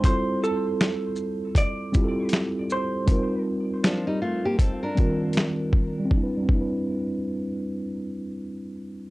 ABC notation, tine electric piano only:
X:1
M:4/4
L:1/8
Q:"Swing 16ths" 1/4=79
K:C
V:1 name="Tine electric piano"
[G,CEFA]3 z2 [G,CEFGA]2 z | [G,C_EF_B]3 z2 [_E,G,CFB]2 z | [G,CDEB] [G,CDEB]6- [G,CDEB] |]